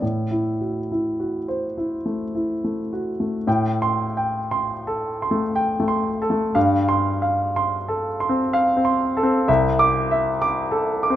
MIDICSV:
0, 0, Header, 1, 2, 480
1, 0, Start_track
1, 0, Key_signature, 0, "minor"
1, 0, Tempo, 1167315
1, 5, Time_signature, 3, 2, 24, 8
1, 965, Tempo, 1123596
1, 1445, Tempo, 1058201
1, 1925, Tempo, 1010101
1, 3365, Tempo, 963082
1, 4325, Tempo, 931677
1, 5188, End_track
2, 0, Start_track
2, 0, Title_t, "Grand piano"
2, 0, Program_c, 0, 0
2, 0, Control_c, 0, 64, 127
2, 8, Note_on_c, 0, 45, 38
2, 14, Control_c, 0, 64, 0
2, 104, Control_c, 0, 64, 127
2, 127, Note_on_c, 0, 64, 29
2, 249, Note_on_c, 0, 66, 24
2, 322, Note_off_c, 0, 64, 0
2, 370, Note_off_c, 0, 66, 0
2, 376, Note_on_c, 0, 64, 31
2, 492, Note_on_c, 0, 66, 30
2, 565, Note_off_c, 0, 64, 0
2, 610, Note_on_c, 0, 72, 41
2, 682, Note_off_c, 0, 66, 0
2, 730, Note_on_c, 0, 64, 27
2, 800, Note_off_c, 0, 72, 0
2, 845, Note_on_c, 0, 57, 27
2, 918, Note_off_c, 0, 64, 0
2, 966, Note_on_c, 0, 64, 30
2, 1036, Note_off_c, 0, 57, 0
2, 1092, Note_on_c, 0, 57, 28
2, 1160, Note_off_c, 0, 64, 0
2, 1213, Note_on_c, 0, 66, 31
2, 1284, Note_off_c, 0, 57, 0
2, 1329, Note_on_c, 0, 57, 27
2, 1401, Note_off_c, 0, 66, 0
2, 1428, Note_off_c, 0, 45, 0
2, 1444, Note_off_c, 0, 57, 0
2, 1446, Note_on_c, 0, 45, 45
2, 1448, Note_on_c, 0, 79, 40
2, 1450, Control_c, 0, 64, 0
2, 1519, Control_c, 0, 64, 127
2, 1604, Note_on_c, 0, 84, 45
2, 1703, Note_off_c, 0, 79, 0
2, 1762, Note_on_c, 0, 79, 39
2, 1861, Note_off_c, 0, 84, 0
2, 1918, Note_on_c, 0, 84, 37
2, 2022, Note_off_c, 0, 79, 0
2, 2088, Note_on_c, 0, 69, 37
2, 2184, Note_off_c, 0, 84, 0
2, 2255, Note_on_c, 0, 84, 36
2, 2297, Note_on_c, 0, 57, 36
2, 2348, Note_off_c, 0, 69, 0
2, 2413, Note_on_c, 0, 79, 43
2, 2487, Note_off_c, 0, 57, 0
2, 2510, Note_off_c, 0, 84, 0
2, 2528, Note_on_c, 0, 57, 38
2, 2567, Note_on_c, 0, 84, 39
2, 2667, Note_off_c, 0, 79, 0
2, 2720, Note_off_c, 0, 57, 0
2, 2727, Note_on_c, 0, 69, 41
2, 2767, Note_on_c, 0, 57, 34
2, 2822, Note_off_c, 0, 84, 0
2, 2871, Note_off_c, 0, 45, 0
2, 2885, Note_on_c, 0, 43, 49
2, 2885, Note_on_c, 0, 77, 43
2, 2887, Note_off_c, 0, 57, 0
2, 2887, Note_off_c, 0, 69, 0
2, 2897, Control_c, 0, 64, 0
2, 2973, Control_c, 0, 64, 127
2, 3045, Note_on_c, 0, 84, 52
2, 3142, Note_off_c, 0, 77, 0
2, 3204, Note_on_c, 0, 77, 41
2, 3300, Note_off_c, 0, 84, 0
2, 3367, Note_on_c, 0, 84, 45
2, 3460, Note_off_c, 0, 77, 0
2, 3527, Note_on_c, 0, 69, 43
2, 3623, Note_off_c, 0, 84, 0
2, 3686, Note_on_c, 0, 84, 40
2, 3730, Note_on_c, 0, 60, 39
2, 3782, Note_off_c, 0, 69, 0
2, 3851, Note_on_c, 0, 77, 48
2, 3920, Note_off_c, 0, 60, 0
2, 3942, Note_off_c, 0, 84, 0
2, 3967, Note_on_c, 0, 60, 39
2, 4007, Note_on_c, 0, 84, 45
2, 4105, Note_off_c, 0, 77, 0
2, 4158, Note_off_c, 0, 60, 0
2, 4167, Note_on_c, 0, 69, 46
2, 4199, Note_on_c, 0, 60, 46
2, 4261, Note_off_c, 0, 84, 0
2, 4302, Note_off_c, 0, 43, 0
2, 4320, Note_off_c, 0, 60, 0
2, 4322, Note_on_c, 0, 36, 55
2, 4323, Note_on_c, 0, 76, 49
2, 4324, Note_off_c, 0, 69, 0
2, 4331, Control_c, 0, 64, 0
2, 4416, Control_c, 0, 64, 127
2, 4483, Note_on_c, 0, 86, 62
2, 4582, Note_off_c, 0, 76, 0
2, 4647, Note_on_c, 0, 76, 49
2, 4742, Note_off_c, 0, 86, 0
2, 4805, Note_on_c, 0, 86, 52
2, 4903, Note_off_c, 0, 76, 0
2, 4958, Note_on_c, 0, 69, 44
2, 5060, Note_off_c, 0, 86, 0
2, 5121, Note_on_c, 0, 86, 42
2, 5158, Note_on_c, 0, 60, 41
2, 5188, Note_off_c, 0, 36, 0
2, 5188, Note_off_c, 0, 60, 0
2, 5188, Note_off_c, 0, 69, 0
2, 5188, Note_off_c, 0, 86, 0
2, 5188, End_track
0, 0, End_of_file